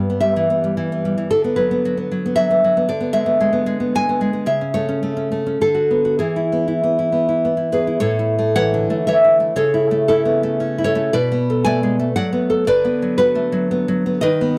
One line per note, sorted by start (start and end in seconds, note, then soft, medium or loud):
0.00 1.26 G2 medium
0.00 0.20 G3 soft
0.00 0.20 G5 medium
0.10 0.49 B3 soft
0.20 0.63 G3 medium
0.20 1.24 E5 medium
0.36 0.76 E3 soft
0.50 0.91 B3 soft
0.64 1.04 G3 medium
0.77 1.16 E3 medium
0.92 1.30 B3 soft
1.05 1.31 G3 medium
1.18 1.30 E3 soft
1.31 2.85 D3 medium
1.31 1.44 A4 medium
1.44 1.70 B3 medium
1.56 1.84 F#3 soft
1.56 2.32 B4 medium
1.71 1.96 B3 medium
1.85 2.10 F#3 medium
1.97 2.24 B3 medium
2.12 2.36 F#3 medium
2.26 2.49 B3 medium
2.36 2.63 F#3 medium
2.36 2.86 E5 loud
2.50 2.76 B3 soft
2.64 2.89 F#3 medium
2.77 2.89 B3 medium
2.89 4.45 D3 medium
2.89 3.13 D5 medium
3.00 3.25 B3 soft
3.13 3.39 G#3 medium
3.13 3.90 E5 medium
3.26 3.51 B3 medium
3.40 3.65 G#3 medium
3.53 3.79 B3 medium
3.66 3.94 G#3 medium
3.80 4.08 B3 medium
3.95 4.20 G#3 medium
3.95 4.46 G#5 loud
4.09 4.32 B3 medium
4.21 4.48 G#3 medium
4.33 4.48 B3 soft
4.46 5.56 C#3 medium
4.46 4.74 E5 medium
4.61 4.87 C#4 soft
4.74 5.01 A3 soft
4.74 5.56 C#5 medium
4.89 5.15 C#4 medium
5.03 5.30 A3 soft
5.17 5.45 C#4 soft
5.32 5.60 A3 soft
5.46 5.61 C#4 medium
5.61 6.19 D3 medium
5.61 6.18 A4 medium
5.75 6.04 F#4 soft
5.91 6.21 B3 soft
6.05 6.18 F#4 soft
6.19 7.97 E3 medium
6.19 7.38 G#4 medium
6.36 6.66 E4 soft
6.52 6.82 B3 soft
6.68 6.98 E4 soft
6.83 7.11 B3 soft
6.99 7.27 E4 soft
7.12 7.44 B3 soft
7.29 7.56 E4 soft
7.45 7.71 B3 soft
7.57 7.86 E4 soft
7.72 8.01 B3 soft
7.72 8.00 G#4 medium
7.72 8.00 B4 medium
7.87 8.00 E4 soft
8.00 8.90 A2 medium
8.00 8.50 A4 medium
8.00 8.52 C#5 loud
8.19 8.97 E4 medium
8.39 8.73 A3 medium
8.55 9.07 E3 medium
8.55 9.03 C#5 medium
8.55 9.04 F#5 loud
8.74 9.48 D3 medium
8.90 9.39 A3 medium
9.07 9.55 E3 medium
9.07 9.54 C#5 medium
9.07 9.24 E5 medium
9.24 9.57 E4 medium
9.40 9.56 A3 medium
9.56 11.09 C#3 medium
9.56 10.05 A4 medium
9.56 10.06 C#5 loud
9.74 10.08 E4 medium
9.91 10.42 A3 medium
10.08 10.59 C#4 medium
10.08 10.57 E4 medium
10.08 10.25 A4 medium
10.25 10.84 B3 medium
10.43 10.94 A3 medium
10.60 11.13 C#4 medium
10.78 11.13 E4 medium
10.84 11.10 A4 medium
10.84 11.11 C#5 loud
10.95 11.13 A3 medium
11.13 12.16 B2 medium
11.13 11.62 B4 medium
11.13 11.63 D5 loud
11.32 12.08 B3 medium
11.50 12.25 A4 medium
11.65 11.83 A3 medium
11.65 12.12 D5 medium
11.65 12.13 G#5 loud
11.83 11.99 G#3 medium
12.00 12.67 A3 medium
12.16 12.67 F#3 medium
12.16 12.32 D5 medium
12.16 12.65 F#5 medium
12.33 12.67 B3 medium
12.50 12.67 A4 medium
12.67 14.18 D3 medium
12.67 13.14 B4 medium
12.67 13.15 D5 loud
12.85 13.18 B3 medium
13.02 13.51 F#3 medium
13.18 13.70 B3 medium
13.18 13.66 F#4 medium
13.18 13.67 B4 loud
13.35 14.13 A3 medium
13.52 13.87 F#3 medium
13.71 14.05 B3 medium
13.88 14.22 F#3 medium
14.06 14.22 B3 medium
14.21 14.58 D#3 medium
14.21 14.58 B4 medium
14.21 14.58 D#5 loud
14.41 14.58 B3 medium